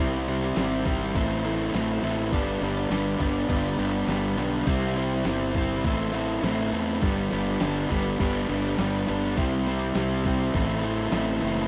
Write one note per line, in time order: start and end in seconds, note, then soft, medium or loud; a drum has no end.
0.00 0.52 C2 medium
0.00 0.27 C3 medium
0.00 0.27 G3 medium
0.00 0.28 C4 loud
0.00 0.29 E4 loud
0.00 0.29 G4 loud
0.28 0.57 C3 medium
0.28 0.57 G3 medium
0.28 0.58 C4 medium
0.28 0.58 E4 medium
0.28 0.58 G4 medium
0.28 ride medium
0.56 1.11 G#1 medium
0.56 0.85 C3 medium
0.56 0.85 G3 medium
0.56 0.86 C4 medium
0.56 0.86 E4 medium
0.56 0.87 G4 medium
0.56 snare loud
0.56 ride loud
0.56 tambourine medium
0.85 1.13 C3 medium
0.85 1.13 G3 medium
0.85 1.14 C4 loud
0.85 1.14 E4 medium
0.85 1.14 G4 medium
0.85 kick loud
0.85 ride medium
0.85 tambourine medium
1.14 1.70 A1 medium
1.14 1.44 A2 medium
1.14 1.44 E3 medium
1.14 1.44 A3 medium
1.14 1.44 C4 loud
1.14 1.45 E4 loud
1.14 1.45 A4 medium
1.14 kick loud
1.14 ride loud
1.14 tambourine soft
1.44 1.73 A2 medium
1.44 1.74 E3 medium
1.44 1.74 A3 medium
1.44 1.74 C4 medium
1.44 1.74 E4 loud
1.44 1.75 A4 loud
1.44 ride medium
1.44 tambourine medium
1.74 2.01 A1 loud
1.74 2.01 A2 medium
1.74 2.02 E3 medium
1.74 2.02 A3 loud
1.74 2.02 C4 medium
1.74 2.03 E4 medium
1.74 2.03 A4 loud
1.74 snare loud
1.74 ride medium
1.74 tambourine medium
2.02 2.30 A1 medium
2.02 2.30 A2 medium
2.02 2.31 E3 medium
2.02 2.31 A3 medium
2.02 2.31 C4 medium
2.02 2.31 E4 loud
2.02 2.31 A4 medium
2.02 ride medium
2.02 tambourine medium
2.31 2.59 G1 medium
2.31 2.60 G2 medium
2.31 2.60 D3 medium
2.31 2.61 G3 medium
2.31 2.61 B3 loud
2.31 2.61 D4 loud
2.31 2.62 G4 loud
2.31 kick loud
2.31 ride loud
2.31 tambourine medium
2.61 2.88 G1 loud
2.61 2.89 G2 medium
2.61 2.90 D3 medium
2.61 2.90 G3 medium
2.61 2.91 B3 loud
2.61 2.91 D4 medium
2.61 2.92 G4 medium
2.61 ride medium
2.90 3.18 G1 medium
2.90 3.18 G2 medium
2.90 3.18 D3 medium
2.90 3.19 G3 medium
2.90 3.19 B3 medium
2.90 3.20 D4 medium
2.90 3.20 G4 medium
2.90 snare loud
2.90 ride loud
2.90 tambourine loud
3.19 3.47 G1 medium
3.19 3.47 G2 medium
3.19 3.47 D3 medium
3.19 3.48 G3 medium
3.19 3.48 B3 loud
3.19 3.48 D4 loud
3.19 3.48 G4 loud
3.19 kick medium
3.19 ride medium
3.19 tambourine medium
3.48 3.76 G1 loud
3.48 3.76 G2 loud
3.48 3.76 D3 loud
3.48 3.77 G3 loud
3.48 3.78 B3 medium
3.48 3.78 D4 loud
3.48 3.78 G4 loud
3.48 kick loud
3.48 tambourine soft
3.48 crash loud
3.77 4.06 G1 loud
3.77 4.05 G2 medium
3.77 4.06 D3 medium
3.77 4.06 G3 loud
3.77 4.07 B3 medium
3.77 4.07 D4 medium
3.77 4.07 G4 loud
3.77 ride medium
3.77 tambourine medium
4.06 4.35 G1 loud
4.06 4.35 G2 medium
4.06 4.35 D3 medium
4.06 4.36 G3 medium
4.06 4.36 B3 medium
4.06 4.36 D4 loud
4.06 4.37 G4 medium
4.06 snare loud
4.06 ride loud
4.06 tambourine medium
4.36 4.64 B1 medium
4.36 4.64 G2 medium
4.36 4.65 D3 medium
4.36 4.64 G3 medium
4.36 4.65 B3 medium
4.36 4.65 D4 medium
4.36 4.65 G4 medium
4.36 ride medium
4.36 tambourine medium
4.65 5.22 C2 loud
4.65 4.95 C3 loud
4.65 4.95 G3 loud
4.65 4.96 C4 loud
4.65 4.96 E4 loud
4.65 4.96 G4 loud
4.65 kick loud
4.65 ride loud
4.65 tambourine medium
4.96 5.25 C3 medium
4.96 5.26 G3 medium
4.96 5.26 C4 medium
4.96 5.26 E4 medium
4.96 5.27 G4 medium
4.96 ride medium
5.25 5.80 G1 medium
5.25 5.53 C3 medium
5.25 5.54 G3 medium
5.25 5.54 C4 medium
5.25 5.55 E4 medium
5.25 5.55 G4 medium
5.25 snare loud
5.25 ride loud
5.25 tambourine loud
5.54 5.82 C3 medium
5.54 5.83 G3 medium
5.54 5.83 C4 medium
5.54 5.83 E4 loud
5.54 5.83 G4 medium
5.54 kick medium
5.54 ride medium
5.54 tambourine medium
5.84 6.39 A1 medium
5.84 6.11 A2 loud
5.84 6.12 E3 loud
5.84 6.13 A3 medium
5.84 6.12 C4 medium
5.84 6.12 E4 medium
5.84 6.13 A4 loud
5.84 kick loud
5.84 ride loud
6.13 6.41 A2 medium
6.13 6.41 E3 medium
6.13 6.42 A3 medium
6.13 6.42 C4 medium
6.13 6.42 E4 medium
6.13 6.42 A4 medium
6.13 ride medium
6.13 tambourine medium
6.42 6.71 A1 loud
6.42 6.71 A2 medium
6.42 6.72 E3 medium
6.42 6.72 A3 medium
6.42 6.72 C4 medium
6.42 6.73 E4 medium
6.42 6.73 A4 medium
6.42 snare loud
6.42 ride medium
6.42 tambourine loud
6.72 7.00 E2 loud
6.72 7.00 A2 medium
6.72 7.00 E3 medium
6.72 7.00 A3 medium
6.72 7.01 C4 medium
6.72 7.01 E4 loud
6.72 7.01 A4 medium
6.72 ride medium
6.72 tambourine medium
7.01 7.29 G1 medium
7.01 7.29 G2 medium
7.01 7.30 D3 loud
7.01 7.31 G3 medium
7.01 7.31 B3 loud
7.01 7.31 D4 loud
7.01 7.32 G4 loud
7.01 kick loud
7.01 ride loud
7.01 tambourine medium
7.31 7.59 G1 loud
7.31 7.59 G2 medium
7.31 7.60 D3 medium
7.31 7.60 G3 medium
7.31 7.61 B3 medium
7.31 7.62 D4 medium
7.31 7.62 G4 medium
7.31 ride medium
7.31 tambourine soft
7.60 7.88 G1 medium
7.60 7.88 G2 medium
7.60 7.89 D3 medium
7.60 7.89 G3 medium
7.60 7.90 B3 medium
7.60 7.90 D4 medium
7.60 7.90 G4 medium
7.60 snare loud
7.60 ride medium
7.60 tambourine loud
7.90 8.18 G1 medium
7.90 8.17 G2 medium
7.90 8.18 D3 medium
7.90 8.18 G3 medium
7.90 8.18 B3 loud
7.90 8.19 D4 medium
7.90 8.19 G4 medium
7.90 kick medium
7.90 ride medium
7.90 tambourine medium
8.18 8.47 G1 medium
8.18 8.47 G2 medium
8.18 8.48 D3 medium
8.18 8.49 G3 medium
8.18 8.49 B3 medium
8.18 8.49 D4 loud
8.18 8.49 G4 loud
8.18 kick loud
8.18 crash loud
8.18 tambourine soft
8.48 8.77 G1 medium
8.48 8.77 G2 medium
8.48 8.78 D3 medium
8.48 8.78 G3 loud
8.48 8.79 B3 loud
8.48 8.78 D4 medium
8.48 8.79 G4 medium
8.48 ride medium
8.48 tambourine medium
8.78 9.06 G1 loud
8.78 9.06 G2 medium
8.78 9.06 D3 medium
8.78 9.07 G3 medium
8.78 9.08 B3 medium
8.78 9.08 D4 loud
8.78 9.08 G4 loud
8.78 snare loud
8.78 ride loud
8.78 tambourine loud
9.07 9.36 G1 medium
9.07 9.35 G2 medium
9.07 9.35 D3 medium
9.07 9.36 G3 medium
9.07 9.36 B3 medium
9.07 9.36 D4 loud
9.07 9.36 G4 medium
9.07 ride medium
9.07 tambourine medium
9.24 snare soft
9.37 9.92 C2 loud
9.37 9.66 C3 loud
9.37 9.66 G3 loud
9.37 9.67 C4 loud
9.37 9.67 E4 loud
9.37 9.68 G4 loud
9.37 kick loud
9.37 ride loud
9.37 tambourine medium
9.66 9.95 C3 medium
9.66 9.95 G3 medium
9.66 9.96 C4 medium
9.66 9.97 E4 medium
9.66 9.97 G4 medium
9.66 ride medium
9.95 10.51 C2 medium
9.95 10.25 C3 medium
9.95 10.25 G3 medium
9.95 10.26 C4 medium
9.95 10.26 E4 medium
9.95 10.26 G4 medium
9.95 snare loud
9.95 ride loud
9.95 tambourine loud
10.25 10.53 C3 medium
10.25 10.54 G3 loud
10.25 10.54 C4 loud
10.25 10.54 E4 medium
10.25 10.54 G4 loud
10.25 kick medium
10.25 ride medium
10.25 tambourine medium
10.54 11.10 A1 medium
10.54 10.83 A2 medium
10.54 10.84 E3 loud
10.54 10.83 A3 loud
10.54 10.84 C4 medium
10.54 10.85 E4 loud
10.54 10.85 A4 loud
10.54 kick loud
10.54 ride loud
10.54 tambourine soft
10.83 11.12 A2 loud
10.83 11.13 E3 medium
10.83 11.12 A3 loud
10.83 11.13 C4 medium
10.83 11.13 E4 loud
10.83 11.14 A4 loud
10.83 ride medium
10.83 tambourine medium
11.12 11.40 A1 loud
11.12 11.41 A2 medium
11.12 11.42 E3 loud
11.12 11.42 A3 medium
11.12 11.43 C4 medium
11.12 11.43 E4 medium
11.12 11.44 A4 loud
11.12 snare loud
11.12 ride loud
11.12 tambourine loud
11.41 11.68 F#1 loud
11.41 11.68 A2 medium
11.41 11.68 E3 medium
11.41 11.68 A3 loud
11.41 11.68 C4 medium
11.41 11.68 E4 medium
11.41 11.68 A4 medium
11.41 ride medium
11.41 tambourine medium
11.56 snare soft